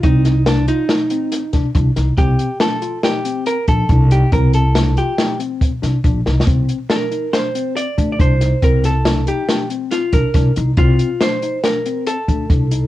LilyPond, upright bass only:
\new Staff \with { instrumentName = "Upright bass" } { \clef bass \time 5/4 \key c \dorian \tempo 4 = 140 c,2 r4. c,16 r16 c,8 c,8 | c,8 r2. bes,,8 c,4 | c,2 r4. c,16 r16 bes,,8 c,8 | c,8 r2. d,8 c,4 |
c,2 r4. c,16 r16 c,8 c,8 | c,8 r2. d,8 c,4 | }